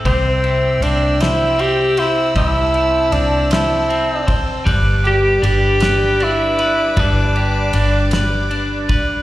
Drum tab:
RD |xxxxxx|xxxxxx|xxxxxx|xxxxxx|
SD |---o--|---o--|---o--|---o--|
BD |o-----|o----o|o-----|o----o|